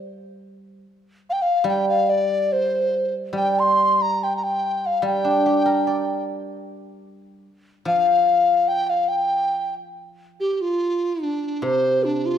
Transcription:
0.00 0.83 G3 medium
1.30 1.33 F5 medium
1.30 1.43 G5 medium
1.42 1.67 F5 medium
1.64 3.32 G3 medium
1.68 1.86 G5 medium
1.89 2.11 F5 medium
2.10 2.54 D5 medium
2.52 3.15 C5 medium
3.33 5.01 G3 medium
3.37 3.61 G5 medium
3.59 4.03 C6 medium
4.02 4.25 A#5 medium
4.23 4.36 G5 medium
4.37 4.45 A#5 soft
4.44 4.88 G5 medium
4.86 5.05 F5 medium
5.02 7.46 G3 medium
5.07 6.24 G5 medium
5.24 6.87 D4 soft
5.46 7.07 G4 soft
5.66 7.27 A#4 soft
5.87 7.48 D5 soft
7.85 10.39 F3 medium
7.85 8.70 F5 medium
8.68 8.87 G5 medium
8.87 9.10 F5 medium
8.87 8.91 G5 medium
9.08 9.74 G5 medium
10.40 10.53 G4 medium
10.53 10.63 G4 medium
10.61 11.25 F4 medium
11.23 11.65 D4 medium
11.62 12.38 C3 medium
11.62 12.06 C5 medium
12.04 12.27 D4 medium
12.26 12.38 F4 medium

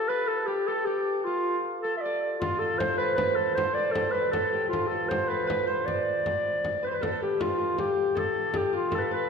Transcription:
0.00 1.26 F4 medium
0.00 0.47 G4 medium
0.00 0.67 A4 medium
0.08 0.29 B4 medium
0.08 2.14 B4 medium
0.27 0.48 A4 medium
0.46 0.69 G4 medium
0.46 0.86 G4 medium
0.67 0.87 A4 medium
0.67 1.84 A4 medium
0.85 1.21 G4 medium
0.85 3.22 G4 medium
1.21 1.57 F4 medium
1.21 1.26 G4 medium
1.27 2.43 F4 medium
1.82 1.95 A4 medium
1.82 2.61 A4 medium
1.97 2.31 D5 medium
1.97 2.02 E5 medium
2.05 3.77 D5 medium
2.40 2.61 F4 medium
2.40 4.72 F4 medium
2.40 frame drum medium
2.59 2.80 A4 medium
2.59 3.36 A4 medium
2.78 2.97 C5 loud
2.78 3.05 C5 medium
2.78 frame drum medium
2.98 3.15 B4 medium
2.98 3.18 B4 medium
3.15 3.36 B4 medium
3.15 3.64 B4 medium
3.15 frame drum medium
3.35 3.54 A4 medium
3.35 3.95 A4 medium
3.35 frame drum soft
3.55 3.75 C5 medium
3.55 4.20 C5 medium
3.55 frame drum medium
3.74 3.93 D5 medium
3.74 5.62 D5 medium
3.91 4.12 A4 medium
3.91 frame drum medium
3.96 4.33 A4 medium
4.11 4.31 B4 medium
4.11 5.16 B4 medium
4.31 4.68 A4 medium
4.31 4.91 A4 medium
4.31 frame drum medium
4.52 6.88 G4 medium
4.52 frame drum soft
4.69 4.89 F4 medium
4.69 7.25 F4 medium
4.73 frame drum medium
4.88 5.10 A4 medium
4.88 7.01 A4 medium
5.08 5.30 C5 medium
5.08 5.36 C5 medium
5.08 frame drum medium
5.28 5.47 B4 medium
5.47 5.73 B4 medium
5.47 5.66 B4 medium
5.47 frame drum medium
5.67 5.87 C5 medium
5.67 6.89 C5 medium
5.86 6.82 D5 medium
5.86 7.73 D5 medium
5.86 frame drum medium
6.26 frame drum medium
6.46 frame drum soft
6.64 frame drum medium
6.83 6.91 B4 medium
6.83 6.88 B4 medium
6.83 6.95 C5 medium
6.91 8.96 B4 medium
6.91 7.03 B4 medium
7.01 7.07 A4 medium
7.01 7.21 A4 medium
7.01 frame drum medium
7.07 7.11 A4 medium
7.12 8.15 A4 medium
7.22 7.77 G4 medium
7.22 7.43 G4 medium
7.40 7.57 F4 medium
7.40 7.79 F4 medium
7.40 frame drum medium
7.58 8.72 F4 medium
7.58 frame drum soft
7.78 8.53 G4 medium
7.78 8.19 G4 medium
7.78 frame drum medium
7.98 frame drum soft
8.15 8.90 A4 medium
8.15 8.58 A4 medium
8.15 frame drum medium
8.54 9.29 G4 medium
8.54 8.74 G4 medium
8.54 frame drum medium
8.73 9.29 F4 medium
8.73 8.92 F4 medium
8.73 frame drum soft
8.91 9.01 A4 medium
8.91 8.99 A4 medium
8.91 frame drum medium
8.98 9.29 A4 medium
8.98 9.05 B4 medium
9.04 9.12 A4 medium
9.11 9.29 B4 medium
9.11 frame drum soft

